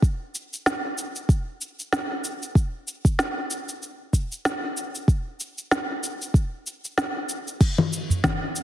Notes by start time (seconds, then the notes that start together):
0.02 kick, shaker
0.35 shaker
0.53 shaker
0.66 snare, shaker
0.98 shaker
1.16 shaker
1.29 kick, shaker
1.61 shaker
1.80 shaker
1.93 snare, shaker
2.25 shaker
2.43 shaker
2.55 kick, shaker
2.88 shaker
3.05 kick, shaker
3.19 snare, shaker
3.51 shaker
3.69 shaker
3.83 shaker
4.13 kick, shaker
4.32 shaker
4.45 snare, shaker
4.77 shaker
4.95 shaker
5.08 kick, shaker
5.40 shaker
5.58 shaker
5.71 snare, shaker
6.04 shaker
6.22 shaker
6.34 kick, shaker
6.67 shaker
6.85 shaker
6.98 snare, shaker
7.29 shaker
7.48 shaker
7.61 kick, crash, shaker
7.78 low conga
7.93 shaker
8.10 udu, shaker
8.24 kick, snare, low conga, shaker
8.56 shaker